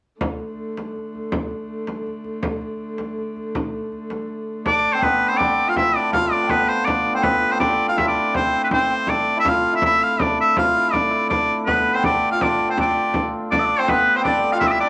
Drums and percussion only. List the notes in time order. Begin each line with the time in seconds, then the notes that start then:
0.21 frame drum
0.40 frame drum
0.77 frame drum
0.96 frame drum
1.15 frame drum
1.32 frame drum
1.51 frame drum
1.87 frame drum
2.07 frame drum
2.24 frame drum
2.43 frame drum
2.61 frame drum
2.98 frame drum
3.18 frame drum
3.36 frame drum
3.55 frame drum
3.92 frame drum
4.10 frame drum
4.66 frame drum
4.84 frame drum
5.02 frame drum
5.22 frame drum
5.40 frame drum
5.76 frame drum
5.95 frame drum
6.13 frame drum
6.32 frame drum
6.49 frame drum
6.87 frame drum
7.23 frame drum
7.42 frame drum
7.60 frame drum
7.98 frame drum
8.16 frame drum
8.34 frame drum
8.53 frame drum
8.71 frame drum
9.07 frame drum
9.26 frame drum
9.45 frame drum
9.82 frame drum
10.20 frame drum
10.39 frame drum
10.56 frame drum
10.76 frame drum
10.93 frame drum
11.31 frame drum
11.67 frame drum
11.86 frame drum
12.04 frame drum
12.41 frame drum
12.77 frame drum
13.14 frame drum
13.34 frame drum
13.52 frame drum
13.71 frame drum
13.88 frame drum
14.08 frame drum
14.25 frame drum
14.61 frame drum
14.80 frame drum